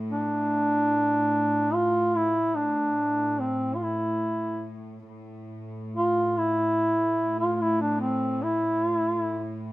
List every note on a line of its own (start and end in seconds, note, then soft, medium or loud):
0.00 5.08 A2 soft
0.10 1.75 D4 loud
1.74 2.17 F4 loud
2.16 2.57 E4 medium
2.56 3.42 D4 medium
3.40 3.77 C4 medium
3.75 3.85 F4 medium
3.83 4.68 E4 medium
5.09 9.73 A2 soft
5.96 6.39 F4 loud
6.38 7.39 E4 medium
7.40 7.54 F4 medium
7.54 7.63 F4 medium
7.61 7.81 E4 medium
7.81 7.99 D4 medium
8.00 8.44 C4 medium
8.43 9.62 E4 medium